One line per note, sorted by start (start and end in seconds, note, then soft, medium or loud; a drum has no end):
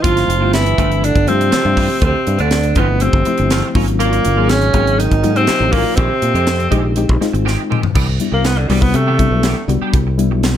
0.02 0.26 G1 medium
0.02 0.19 E3 medium
0.02 0.34 F3 medium
0.02 0.54 F3 medium
0.02 0.34 A3 medium
0.02 0.19 A3 medium
0.02 0.34 C4 medium
0.02 0.19 C4 medium
0.02 0.34 E4 medium
0.02 0.53 F4 loud
0.02 0.20 F4 medium
0.02 kick loud
0.02 closed hi-hat medium
0.17 snare soft
0.17 closed hi-hat soft
0.28 0.41 F1 medium
0.28 closed hi-hat medium
0.40 0.73 G1 medium
0.40 0.71 F3 medium
0.40 0.71 A3 medium
0.40 0.52 A3 soft
0.40 0.71 C4 medium
0.40 0.52 C4 soft
0.40 0.71 E4 medium
0.40 0.52 F4 soft
0.53 1.07 E3 medium
0.53 1.06 E4 medium
0.53 muted clean electric guitar stroke soft
0.53 snare loud
0.53 closed hi-hat medium
0.66 muted clean electric guitar stroke soft
0.66 closed hi-hat soft
0.78 1.11 G1 medium
0.78 0.91 E3 medium
0.78 1.18 F3 medium
0.78 0.91 A3 medium
0.78 1.18 A3 medium
0.78 0.90 C4 medium
0.78 1.18 C4 medium
0.78 1.18 E4 medium
0.78 0.90 F4 medium
0.78 kick medium
0.78 closed hi-hat medium
0.91 muted clean electric guitar stroke soft
0.91 closed hi-hat soft
1.03 1.32 D3 medium
1.03 1.30 D4 medium
1.03 muted clean electric guitar stroke soft
1.03 closed hi-hat medium
1.15 1.26 G1 medium
1.15 muted clean electric guitar stroke soft
1.15 kick medium
1.15 closed hi-hat soft
1.27 1.49 G2 medium
1.27 2.03 C3 medium
1.27 2.07 F3 medium
1.27 2.07 A3 medium
1.27 2.07 C4 medium
1.27 2.03 C4 medium
1.27 2.07 F4 medium
1.27 muted clean electric guitar stroke soft
1.27 closed hi-hat medium
1.40 muted clean electric guitar stroke soft
1.40 closed hi-hat soft
1.51 1.67 E3 medium
1.51 1.68 A3 medium
1.51 1.67 C4 medium
1.51 1.68 F4 medium
1.51 muted fingered electric bass stroke soft
1.51 snare loud
1.51 closed hi-hat medium
1.65 1.87 G2 medium
1.76 1.90 E3 medium
1.76 1.89 A3 medium
1.76 1.89 C4 medium
1.76 1.88 F4 medium
1.76 kick medium
1.76 open hi-hat medium
1.89 muted clean electric guitar stroke soft
2.01 2.13 D2 loud
2.01 2.38 C3 medium
2.01 2.17 E3 medium
2.01 2.17 A3 medium
2.01 2.17 C4 medium
2.01 2.38 C4 medium
2.01 2.17 F4 medium
2.01 kick loud
2.01 closed hi-hat medium
2.27 2.38 G2 medium
2.27 closed hi-hat medium
2.39 2.72 D2 medium
2.39 2.82 D3 medium
2.39 2.51 A3 soft
2.39 2.50 C4 soft
2.39 2.80 D4 medium
2.39 2.51 F4 medium
2.39 closed hi-hat soft
2.51 muted clean electric guitar stroke soft
2.51 snare loud
2.51 closed hi-hat medium
2.63 muted clean electric guitar stroke soft
2.63 closed hi-hat soft
2.75 3.09 G1 medium
2.75 2.89 E3 medium
2.75 2.97 F3 medium
2.75 2.88 A3 medium
2.75 2.97 A3 medium
2.75 3.03 B3 medium
2.75 2.88 C4 medium
2.75 2.97 C4 medium
2.75 2.97 E4 medium
2.75 2.87 F4 loud
2.75 kick medium
2.75 closed hi-hat medium
2.80 3.07 B2 medium
2.89 muted clean electric guitar stroke soft
3.00 3.22 F3 medium
3.00 3.22 A3 medium
3.00 3.76 C4 medium
3.00 3.22 C4 medium
3.00 3.22 F4 medium
3.00 muted clean electric guitar stroke soft
3.00 closed hi-hat medium
3.06 3.78 C3 medium
3.13 3.24 G1 medium
3.13 muted clean electric guitar stroke soft
3.13 kick medium
3.25 3.76 F3 medium
3.25 3.76 A3 medium
3.25 3.76 C4 medium
3.25 3.77 E4 medium
3.25 muted clean electric guitar stroke soft
3.25 closed hi-hat medium
3.37 3.61 G1 medium
3.37 muted clean electric guitar stroke soft
3.37 closed hi-hat soft
3.50 3.66 E3 medium
3.50 3.66 A3 medium
3.50 3.66 C4 medium
3.50 3.66 F4 medium
3.50 snare loud
3.50 closed hi-hat medium
3.75 4.18 G#1 loud
3.75 4.25 F#3 medium
3.75 3.88 F#3 medium
3.75 3.87 A#3 medium
3.75 4.25 A#3 medium
3.75 4.25 C#4 medium
3.75 3.86 C#4 medium
3.75 4.25 F4 loud
3.75 3.86 F4 medium
3.75 kick loud
3.75 open hi-hat medium
3.87 muted clean electric guitar stroke soft
3.87 closed hi-hat soft
3.99 4.52 A#2 medium
3.99 4.15 F#3 medium
3.99 4.15 A#3 medium
3.99 4.51 A#3 medium
3.99 4.15 C#4 medium
3.99 4.15 F4 medium
3.99 closed hi-hat medium
4.13 closed hi-hat soft
4.25 4.37 F#1 medium
4.25 closed hi-hat medium
4.37 4.70 G#1 medium
4.37 4.67 F#3 medium
4.37 4.67 A#3 medium
4.37 4.48 A#3 soft
4.37 4.48 C#4 soft
4.37 4.67 C#4 medium
4.37 4.48 F4 soft
4.37 4.68 G#4 medium
4.49 5.01 C#3 medium
4.49 5.00 C#4 loud
4.49 muted clean electric guitar stroke soft
4.49 snare loud
4.49 closed hi-hat medium
4.61 muted clean electric guitar stroke soft
4.61 closed hi-hat soft
4.73 5.07 G#1 medium
4.73 4.87 F#3 medium
4.73 5.14 F#3 medium
4.73 4.85 A#3 medium
4.73 5.14 A#3 medium
4.73 4.85 C#4 medium
4.73 5.14 C#4 medium
4.73 4.85 F4 medium
4.73 5.14 G#4 medium
4.73 kick medium
4.73 closed hi-hat medium
4.86 muted clean electric guitar stroke soft
4.86 closed hi-hat soft
4.98 5.38 D#3 medium
4.98 5.38 D#4 loud
4.98 muted clean electric guitar stroke soft
4.98 closed hi-hat medium
5.11 5.22 G#1 medium
5.11 muted clean electric guitar stroke soft
5.11 kick medium
5.11 closed hi-hat soft
5.23 5.46 G#2 medium
5.23 5.98 F#3 medium
5.23 5.98 A#3 medium
5.23 5.99 D#4 medium
5.23 5.98 F4 medium
5.23 muted clean electric guitar stroke soft
5.23 closed hi-hat medium
5.36 5.75 C3 medium
5.36 5.73 C4 loud
5.36 muted clean electric guitar stroke soft
5.36 closed hi-hat soft
5.47 5.63 F#3 medium
5.47 5.63 A#3 medium
5.47 5.63 C#4 medium
5.47 5.64 F4 medium
5.47 muted fingered electric bass stroke soft
5.47 snare loud
5.47 closed hi-hat medium
5.60 5.83 A1 medium
5.72 6.00 A#2 medium
5.72 5.85 F#3 medium
5.72 5.97 A#3 medium
5.72 5.85 A#3 medium
5.72 5.84 C#4 medium
5.72 5.84 F4 medium
5.72 kick medium
5.72 open hi-hat medium
5.85 muted clean electric guitar stroke soft
5.95 6.09 A#1 loud
5.95 6.97 C3 medium
5.95 6.13 D#3 medium
5.95 6.13 G#3 medium
5.95 6.96 C4 medium
5.95 6.13 C4 medium
5.95 6.13 G4 medium
5.95 kick loud
5.95 closed hi-hat medium
6.22 6.34 A#2 medium
6.22 closed hi-hat medium
6.34 6.67 F2 medium
6.34 6.46 G#3 soft
6.34 6.45 C4 soft
6.34 6.46 G4 medium
6.34 closed hi-hat soft
6.46 muted clean electric guitar stroke soft
6.46 snare loud
6.46 closed hi-hat medium
6.60 muted clean electric guitar stroke soft
6.60 closed hi-hat soft
6.71 7.05 A#1 medium
6.71 6.84 D#3 medium
6.71 6.83 G#3 loud
6.71 6.92 G#3 loud
6.71 6.92 C4 medium
6.71 6.83 C4 loud
6.71 6.92 D#4 medium
6.71 6.82 G4 medium
6.71 6.92 G4 loud
6.71 kick medium
6.71 closed hi-hat medium
6.83 muted clean electric guitar stroke soft
6.96 7.17 G#3 medium
6.96 7.17 C4 medium
6.96 7.17 D#4 medium
6.96 7.17 G4 medium
6.96 muted clean electric guitar stroke soft
6.96 closed hi-hat medium
7.09 7.20 A#1 medium
7.09 muted clean electric guitar stroke soft
7.09 kick medium
7.21 7.81 G#3 medium
7.21 7.81 C4 medium
7.21 7.81 D#4 medium
7.21 7.81 F4 medium
7.21 muted clean electric guitar stroke soft
7.21 snare soft
7.21 closed hi-hat medium
7.33 7.56 G#1 medium
7.33 muted clean electric guitar stroke medium
7.33 closed hi-hat soft
7.45 7.61 D#3 medium
7.45 7.61 G#3 medium
7.45 7.61 C4 medium
7.45 7.61 G4 medium
7.45 snare medium
7.70 7.83 D#3 medium
7.70 7.82 G#3 medium
7.70 7.82 C4 medium
7.70 7.82 G4 medium
7.70 mid tom medium
7.83 muted clean electric guitar stroke soft
7.83 muted fingered electric bass stroke soft
7.83 floor tom medium
7.95 8.17 C2 medium
7.95 8.08 E3 medium
7.95 8.07 B3 medium
7.95 8.07 D4 medium
7.95 8.06 G4 medium
7.95 kick loud
7.95 crash medium
8.07 muted clean electric guitar stroke soft
8.20 8.60 G3 medium
8.20 8.60 B3 medium
8.20 8.60 D4 medium
8.20 8.61 E4 medium
8.20 closed hi-hat medium
8.32 8.65 C2 medium
8.32 8.46 A#3 medium
8.32 muted clean electric guitar stroke soft
8.45 8.59 B3 medium
8.45 snare loud
8.45 closed hi-hat medium
8.58 8.69 D3 medium
8.58 muted clean electric guitar stroke soft
8.68 8.92 C2 medium
8.68 8.83 E3 medium
8.68 8.83 G3 medium
8.68 9.10 G3 medium
8.68 9.10 B3 medium
8.68 8.83 B3 medium
8.68 9.10 D4 medium
8.68 8.82 D4 medium
8.68 9.10 F#4 medium
8.68 8.82 G4 medium
8.68 open hi-hat medium
8.81 8.96 B3 medium
8.81 muted clean electric guitar stroke soft
8.81 kick medium
8.94 9.27 C3 medium
8.94 9.69 A3 medium
8.94 muted clean electric guitar stroke soft
8.94 closed hi-hat medium
9.07 9.18 E3 medium
9.07 9.19 B3 medium
9.07 9.19 D4 medium
9.07 9.19 G4 medium
9.19 9.59 G3 medium
9.19 9.59 B3 medium
9.19 9.59 D4 medium
9.19 9.59 E4 medium
9.19 muted clean electric guitar stroke soft
9.19 kick medium
9.19 closed hi-hat medium
9.31 9.53 B1 medium
9.43 9.57 E3 medium
9.43 9.56 B3 medium
9.43 9.56 D4 medium
9.43 9.56 G4 medium
9.43 snare medium
9.43 closed hi-hat medium
9.57 muted clean electric guitar stroke soft
9.68 9.80 C2 medium
9.68 10.08 G3 medium
9.68 10.08 B3 medium
9.68 10.09 D4 medium
9.68 10.09 F#4 medium
9.68 muted clean electric guitar stroke soft
9.68 closed hi-hat medium
9.82 9.97 B3 soft
9.82 9.97 D4 soft
9.82 9.97 G4 medium
9.82 muted fingered electric bass stroke soft
9.93 10.30 C2 medium
9.93 kick loud
9.93 closed hi-hat medium
10.07 muted clean electric guitar stroke soft
10.18 10.57 G3 medium
10.18 10.57 B3 medium
10.18 10.57 D4 medium
10.18 10.57 E4 medium
10.18 closed hi-hat medium
10.30 10.57 B1 medium
10.30 muted clean electric guitar stroke soft
10.43 snare loud
10.43 closed hi-hat medium